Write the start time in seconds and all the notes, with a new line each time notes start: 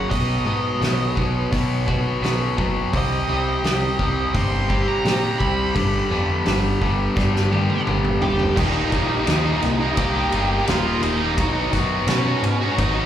Already playing: F#3 A#3 C#4 F#4
0.10 B1 B2 F#3 B3 D#5, kick, open hi-hat
0.46 G#2 B2 F#3 B3
0.80 B1 B2 F#3 B3, snare, open hi-hat
1.15 B1 B2 F#3 B3, kick
1.52 B2 F#3 B3 D#4, kick, open hi-hat
1.86 B2 F#3 B3 F#4, kick
2.22 B1 B2 F#3 B3, snare, open hi-hat
2.57 F#1 B2 F#3 B3, kick
2.93 C2 C3 G3 C4, kick, open hi-hat
2.97 D#5
3.29 C2 C3 G3 C4
3.63 C2 C3 G3 C4, snare, open hi-hat
3.99 C2 C3 G3 C4, kick
4.34 G1 C3 G3 C4 D#4 C6, kick, open hi-hat
4.68 C3 G3 C4 G4, kick
4.88 A#5
5.04 A#2 C3 G3 C4, snare, open hi-hat
5.39 C2 C3 G3 C4 B5, kick
5.74 G1 G2 D3 G3, kick, open hi-hat
6.10 F2 G2 D3 G3 B3
6.45 G1 G2 D3 G3, snare, open hi-hat
6.81 G1 G2 D3 G3 B3, kick
7.16 G2 D3 G3 D4, kick, snare
7.36 snare
7.52 G2 D3 G3 G4, high tom
7.70 high tom
7.87 G1 G2 D3 G3 B3, mid tom
8.05 mid tom
8.22 F1 G2 D3 G3 G4 G5, floor tom
8.39 floor tom
8.57 D#1 D#2 A#2 D#3 G3 A#3 D#4 D#5, kick, crash
8.75 D#3 G3 A#3 D#4
8.92 A#1 D#3 G3 A#3 D#4, kick, ride
9.27 D#2 A#2 D#3 G3 A#3 D#4, snare, ride
9.45 D#3 G3 A#3 D#4
9.62 C2, muted overdriven electric guitar stroke, muted distorted electric guitar stroke, snare, ride
9.80 D#3 G3 A#3 D#4
9.97 C2 D#3 G3 A#3 D#4 G4 G5, kick, ride
10.15 D#3 G3 A#3 D#4
10.32 G1 D#3 G3 A#3 D#4, ride
10.67 D#1 D#2 A#2 D#3 G3 A#3 D#4 F4 F5, snare, ride
10.86 D#3 G3 A#3 D#4
11.01 D#1 D#3 G3 A#3 D#4 D#5, ride
11.21 D#3 G3 A#3 D#4
11.37 B1 B2 F#3 B3 D#4 F#4, kick, ride
11.55 B3 D#4 F#4
11.72 F#2 F#3 B3 D#4 F#4, kick, snare, ride
12.07 B2 F#3 B3 C#4 D#4 F#4 C#5, snare, ride
12.26 B3 D#4 F#4
12.42 G#2, muted overdriven electric guitar stroke, muted distorted electric guitar stroke, ride
12.61 B3 D#4 F#4
12.78 G#1 F#3 B3 D#4 F#4 D#5, kick, ride
12.96 B3 D#4 F#4